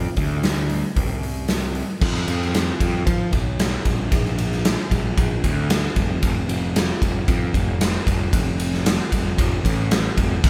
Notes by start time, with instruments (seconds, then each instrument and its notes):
0.17 picked electric bass D2, kick, open hi-hat
0.43 snare, open hi-hat
0.70 open hi-hat
0.96 picked electric bass C2, kick, open hi-hat
1.23 open hi-hat
1.48 snare, open hi-hat
1.75 open hi-hat
2.01 picked electric bass F2, kick, crash
2.15 snare
2.28 picked electric bass F2, ride
2.42 snare
2.55 snare, ride
2.80 picked electric bass F2, kick, ride
3.06 picked electric bass F3, kick, ride
3.32 picked electric bass B1, kick, ride
3.60 snare, ride
3.85 picked electric bass A#1, kick, ride
4.11 picked electric bass A#1, kick, ride
4.25 snare
4.38 ride
4.52 snare
4.65 snare, ride
4.90 picked electric bass A#1, kick, ride
5.17 picked electric bass A#1, kick, ride
5.44 picked electric bass D2, kick, ride
5.70 snare, ride
5.96 picked electric bass F1, kick, ride
6.22 picked electric bass F1, kick, ride
6.48 picked electric bass F1, ride
6.76 snare, ride
7.02 picked electric bass F1, kick, ride
7.28 picked electric bass F2, kick, ride
7.54 picked electric bass F1, kick, ride
7.81 snare, ride
8.06 picked electric bass F1, kick, ride
8.33 picked electric bass F1, kick, ride
8.60 ride
8.74 snare
8.86 snare, ride
9.12 picked electric bass F1, kick, ride
9.38 picked electric bass F1, kick, ride
9.64 picked electric bass A1, kick, ride
9.91 snare, ride
10.17 picked electric bass F1, kick, ride
10.44 picked electric bass G1, kick, crash